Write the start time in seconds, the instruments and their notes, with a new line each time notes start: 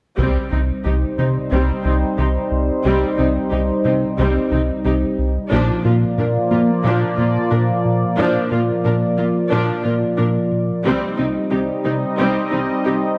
0.18 analog synth bass C2, cello section C3, viola section G3 C4, analog synth pad G3 C4 D#4 C5, taiko
0.52 analog synth bass C2, cello section C3, viola section C4 D#4
0.85 analog synth bass C2, cello section C3, viola section D#4 G4
1.18 cello section C3, analog synth bass C3, viola section C4 D#4
1.51 analog synth bass C2, cello section C3, viola section G3 C4
1.85 analog synth bass C2, cello section C3, viola section C4 D#4
2.18 analog synth bass C2, cello section C3, viola section D#4 G4
2.51 analog synth bass C2
2.85 analog synth bass C2, cello section C3, viola section G3 C4
3.18 analog synth bass C2, cello section C3, viola section C4 D#4
3.51 analog synth bass C2, cello section C3, viola section D#4 G4
3.85 cello section C3, analog synth bass C3, viola section C4 D#4
4.18 analog synth bass C2, cello section C3, viola section G3 C4
4.51 analog synth bass C2, cello section C3, viola section C4 D#4
4.85 analog synth bass C2, cello section C3, viola section D#4 G4
5.18 analog synth bass C2
5.51 analog synth bass A#2, cello section A#2, viola section F3 D4, analog synth pad F3 A#3 F4 D5, taiko
5.85 cello section A#2, analog synth bass A#2, viola section A#3 F4
6.18 analog synth bass A#2, cello section A#2, viola section D4 A#4
6.51 cello section A#2, analog synth bass A#3, viola section A#3 F4
6.84 analog synth bass A#2, cello section A#2, viola section F3 D4
7.18 analog synth bass A#2, cello section A#2, viola section A#3 F4
7.51 analog synth bass A#2, cello section A#2, viola section D4 A#4
7.85 analog synth bass A#2
8.18 cello section A#2, analog synth bass A#2, viola section F3 D4
8.51 cello section A#2, analog synth bass A#2, viola section A#3 F4
8.84 analog synth bass A#2, cello section A#2, viola section D4 A#4
9.18 cello section A#2, viola section A#3 F4, analog synth bass A#3
9.51 cello section A#2, analog synth bass A#2, viola section F3 D4
9.84 analog synth bass A#2, cello section A#2, viola section A#3 F4
10.18 cello section A#2, analog synth bass A#2, viola section D4 A#4
10.52 analog synth bass A#2
10.84 analog synth bass C2, cello section C3, analog synth pad G3 C4 D#4 D#5, viola section G3 C4, taiko
11.17 analog synth bass C2, cello section C3, viola section C4 D#4
11.51 analog synth bass C2, cello section C3, viola section D#4 G4
11.84 cello section C3, analog synth bass C3, viola section C4 D#4, taiko
12.17 analog synth bass C2, cello section C3, viola section G3 C4
12.51 analog synth bass C2, cello section C3, viola section C4 D#4
12.84 analog synth bass C2, cello section C3, viola section D#4 G4